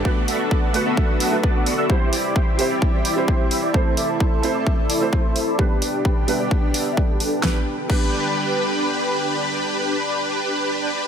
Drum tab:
CC |--------|--------|--------|--------|
HH |-o-o-o-o|-o-o-o-o|-o-o-o-o|-o-o-o-o|
SD |--------|--------|--------|--------|
BD |o-o-o-o-|o-o-o-o-|o-o-o-o-|o-o-o-o-|

CC |--x-----|--------|
HH |--------|--------|
SD |o-------|--------|
BD |o-o-----|--------|